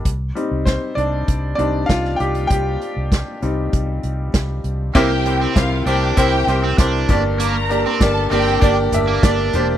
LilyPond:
<<
  \new Staff \with { instrumentName = "Violin section" } { \time 4/4 \key c \dorian \tempo 4 = 98 r1 | r1 | \key c \mixolydian <g' g''>4 <f' f''>8 <g' g''>8 <g' g''>4 r4 | <bes' bes''>4 <a' a''>8 <g' g''>4 r4. | }
  \new Staff \with { instrumentName = "Upright piano" } { \time 4/4 \key c \dorian << { r4 <c' c''>8 <d' d''>4 <d' d''>8 <f' f''>8 <g' g''>8 | <g' g''>2. r4 | \key c \mixolydian <c' e' g' bes' c''>8 <c' e' g' bes' c''>8 <c' e' g' bes' c''>8 <c' e' g' bes' c''>8 <c' e' g' bes' c''>8 <c' e' g' bes' c''>8 <c' e' g' bes' c''>8 <bes d' g' bes' d''>8~ | <bes d' g' bes' d''>8 <bes d' g' bes' d''>8 <bes d' g' bes' d''>8 <bes d' g' bes' d''>8 <bes d' g' bes' d''>8 <bes d' g' bes' e''>8 <bes d' g' bes' d''>8 <bes d' g' bes' c''>8 | } \\ { r8 <g c' ees'>8 r4. <g c' ees'>8 r4 | r4. <g c' ees'>2~ <g c' ees'>8 | c4. r2 g,8~ | g,4 r2. | } >> }
  \new Staff \with { instrumentName = "Overdriven electric guitar" } { \time 4/4 \key c \dorian r1 | r1 | \key c \mixolydian bes16 r8 c'16 r8 d'8 e'16 r8 c'16 d'8. r16 | bes16 r8 c'16 r8 c'8 d'16 r8 bes16 d'8. r16 | }
  \new Staff \with { instrumentName = "Fingered electric bass" } { \clef bass \time 4/4 \key c \dorian c,8 r16 c,8 r16 c,8 c,8 c,8 c,8 c,8 | c,8 r16 c,8 r16 c,8 c,8 c,8 c,8 c,8 | \key c \mixolydian c,4 c,8 c,8 c,8 c,8 c,8 g,,8~ | g,,4 g,,8 g,,8 g,,8 g,,8 g,,8 e,,8 | }
  \new DrumStaff \with { instrumentName = "Drums" } \drummode { \time 4/4 <hh bd>8 hh8 <hh bd sn>8 hh8 <hh bd>8 hh8 <hh bd sn>16 sn16 hh16 hh16 | <hh bd>8 hh8 <hh bd sn>8 hh8 <hh bd>8 hh8 <hh bd sn>8 hh8 | <cymc bd>8 hh8 <hh bd sn>8 hh8 <hh bd>8 hh8 <hh bd sn>8 <hh bd tomfh>8 | hh8 hh8 <hh bd sn>8 hh8 <hh bd>8 <hh tomfh>8 <hh bd sn>16 sn16 <hh tomfh>8 | }
>>